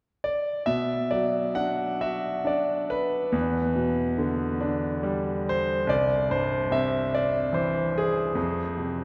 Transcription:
0, 0, Header, 1, 2, 480
1, 0, Start_track
1, 0, Tempo, 882353
1, 366, Time_signature, 3, 2, 24, 8
1, 2286, Tempo, 833333
1, 5073, End_track
2, 0, Start_track
2, 0, Title_t, "Grand piano"
2, 0, Program_c, 0, 0
2, 131, Note_on_c, 0, 74, 65
2, 359, Note_on_c, 0, 76, 72
2, 363, Note_on_c, 0, 47, 45
2, 376, Note_off_c, 0, 74, 0
2, 477, Control_c, 0, 64, 127
2, 602, Note_on_c, 0, 74, 61
2, 608, Note_on_c, 0, 54, 34
2, 613, Note_off_c, 0, 76, 0
2, 832, Note_off_c, 0, 74, 0
2, 844, Note_on_c, 0, 78, 67
2, 847, Note_on_c, 0, 62, 36
2, 1093, Note_on_c, 0, 66, 40
2, 1094, Note_on_c, 0, 76, 64
2, 1099, Note_off_c, 0, 78, 0
2, 1321, Note_off_c, 0, 76, 0
2, 1323, Note_off_c, 0, 62, 0
2, 1331, Note_on_c, 0, 62, 38
2, 1343, Note_on_c, 0, 74, 54
2, 1558, Note_off_c, 0, 54, 0
2, 1578, Note_on_c, 0, 71, 63
2, 1590, Note_off_c, 0, 74, 0
2, 1796, Note_off_c, 0, 47, 0
2, 1796, Note_off_c, 0, 66, 0
2, 1800, Note_off_c, 0, 62, 0
2, 1808, Note_on_c, 0, 40, 53
2, 1825, Control_c, 0, 64, 0
2, 1929, Control_c, 0, 64, 127
2, 2044, Note_on_c, 0, 47, 34
2, 2275, Note_on_c, 0, 50, 43
2, 2518, Note_on_c, 0, 62, 42
2, 2763, Note_on_c, 0, 55, 41
2, 2990, Note_off_c, 0, 47, 0
2, 3030, Note_on_c, 0, 72, 68
2, 3062, Note_off_c, 0, 71, 0
2, 3231, Note_off_c, 0, 40, 0
2, 3231, Note_off_c, 0, 50, 0
2, 3232, Note_off_c, 0, 62, 0
2, 3239, Note_off_c, 0, 55, 0
2, 3246, Note_on_c, 0, 36, 54
2, 3249, Note_off_c, 0, 72, 0
2, 3261, Note_on_c, 0, 74, 69
2, 3267, Control_c, 0, 64, 0
2, 3354, Control_c, 0, 64, 127
2, 3483, Note_off_c, 0, 74, 0
2, 3493, Note_on_c, 0, 43, 43
2, 3501, Note_on_c, 0, 72, 63
2, 3729, Note_on_c, 0, 48, 45
2, 3737, Note_on_c, 0, 76, 69
2, 3745, Note_off_c, 0, 72, 0
2, 3981, Note_off_c, 0, 76, 0
2, 3981, Note_on_c, 0, 74, 65
2, 4196, Note_off_c, 0, 74, 0
2, 4201, Note_on_c, 0, 52, 41
2, 4210, Note_on_c, 0, 72, 54
2, 4417, Note_off_c, 0, 43, 0
2, 4452, Note_off_c, 0, 72, 0
2, 4460, Note_on_c, 0, 68, 61
2, 4653, Note_off_c, 0, 36, 0
2, 4656, Note_off_c, 0, 48, 0
2, 4665, Note_off_c, 0, 52, 0
2, 4676, Note_on_c, 0, 41, 52
2, 4691, Control_c, 0, 64, 0
2, 4806, Control_c, 0, 64, 127
2, 4920, Note_on_c, 0, 48, 33
2, 5073, Note_off_c, 0, 41, 0
2, 5073, Note_off_c, 0, 48, 0
2, 5073, Note_off_c, 0, 68, 0
2, 5073, End_track
0, 0, End_of_file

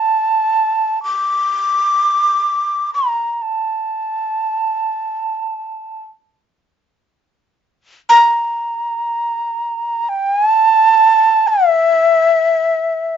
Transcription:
0, 0, Header, 1, 2, 480
1, 0, Start_track
1, 0, Tempo, 500000
1, 12644, End_track
2, 0, Start_track
2, 0, Title_t, "Shakuhachi"
2, 0, Program_c, 0, 77
2, 0, Note_on_c, 0, 81, 70
2, 987, Note_off_c, 0, 81, 0
2, 993, Note_on_c, 0, 86, 71
2, 2789, Note_off_c, 0, 86, 0
2, 2824, Note_on_c, 0, 82, 49
2, 3197, Note_off_c, 0, 82, 0
2, 3197, Note_on_c, 0, 82, 35
2, 3283, Note_on_c, 0, 81, 53
2, 3298, Note_off_c, 0, 82, 0
2, 5794, Note_off_c, 0, 81, 0
2, 7770, Note_on_c, 0, 82, 90
2, 9684, Note_on_c, 0, 79, 93
2, 9699, Note_off_c, 0, 82, 0
2, 9924, Note_off_c, 0, 79, 0
2, 9924, Note_on_c, 0, 80, 93
2, 10078, Note_off_c, 0, 80, 0
2, 10078, Note_on_c, 0, 81, 93
2, 11018, Note_on_c, 0, 76, 97
2, 11033, Note_off_c, 0, 81, 0
2, 12644, Note_off_c, 0, 76, 0
2, 12644, End_track
0, 0, End_of_file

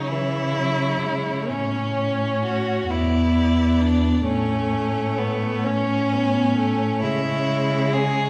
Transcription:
0, 0, Header, 1, 5, 480
1, 0, Start_track
1, 0, Tempo, 920245
1, 785, Time_signature, 6, 3, 24, 8
1, 4327, End_track
2, 0, Start_track
2, 0, Title_t, "Violin"
2, 0, Program_c, 0, 40
2, 0, Note_on_c, 0, 73, 44
2, 1513, Note_on_c, 0, 74, 48
2, 1521, Note_off_c, 0, 73, 0
2, 2213, Note_off_c, 0, 74, 0
2, 2216, Note_on_c, 0, 73, 51
2, 4327, Note_off_c, 0, 73, 0
2, 4327, End_track
3, 0, Start_track
3, 0, Title_t, "Violin"
3, 0, Program_c, 1, 40
3, 39, Note_on_c, 1, 64, 72
3, 767, Note_off_c, 1, 64, 0
3, 770, Note_on_c, 1, 61, 64
3, 1254, Note_off_c, 1, 61, 0
3, 1275, Note_on_c, 1, 66, 64
3, 1515, Note_on_c, 1, 64, 60
3, 1523, Note_off_c, 1, 66, 0
3, 1987, Note_on_c, 1, 62, 63
3, 1995, Note_off_c, 1, 64, 0
3, 2213, Note_off_c, 1, 62, 0
3, 2216, Note_on_c, 1, 61, 72
3, 2701, Note_on_c, 1, 59, 64
3, 2709, Note_off_c, 1, 61, 0
3, 2943, Note_on_c, 1, 61, 79
3, 2951, Note_off_c, 1, 59, 0
3, 3657, Note_off_c, 1, 61, 0
3, 3660, Note_on_c, 1, 64, 80
3, 4138, Note_on_c, 1, 68, 79
3, 4145, Note_off_c, 1, 64, 0
3, 4327, Note_off_c, 1, 68, 0
3, 4327, End_track
4, 0, Start_track
4, 0, Title_t, "Viola"
4, 0, Program_c, 2, 41
4, 0, Note_on_c, 2, 54, 53
4, 56, Note_on_c, 2, 52, 41
4, 64, Note_off_c, 2, 54, 0
4, 305, Note_on_c, 2, 54, 46
4, 313, Note_off_c, 2, 52, 0
4, 546, Note_on_c, 2, 56, 42
4, 554, Note_off_c, 2, 54, 0
4, 789, Note_on_c, 2, 61, 54
4, 797, Note_off_c, 2, 56, 0
4, 1515, Note_off_c, 2, 61, 0
4, 1519, Note_on_c, 2, 59, 56
4, 2212, Note_off_c, 2, 59, 0
4, 2224, Note_on_c, 2, 57, 61
4, 2952, Note_on_c, 2, 61, 55
4, 2960, Note_off_c, 2, 57, 0
4, 3196, Note_on_c, 2, 59, 53
4, 3204, Note_off_c, 2, 61, 0
4, 3428, Note_off_c, 2, 59, 0
4, 3433, Note_on_c, 2, 57, 51
4, 3670, Note_on_c, 2, 56, 60
4, 3677, Note_off_c, 2, 57, 0
4, 4327, Note_off_c, 2, 56, 0
4, 4327, End_track
5, 0, Start_track
5, 0, Title_t, "Cello"
5, 0, Program_c, 3, 42
5, 0, Note_on_c, 3, 49, 40
5, 783, Note_on_c, 3, 45, 46
5, 790, Note_off_c, 3, 49, 0
5, 1507, Note_off_c, 3, 45, 0
5, 1511, Note_on_c, 3, 40, 49
5, 2208, Note_off_c, 3, 40, 0
5, 2221, Note_on_c, 3, 45, 51
5, 3669, Note_on_c, 3, 49, 53
5, 3676, Note_off_c, 3, 45, 0
5, 4327, Note_off_c, 3, 49, 0
5, 4327, End_track
0, 0, End_of_file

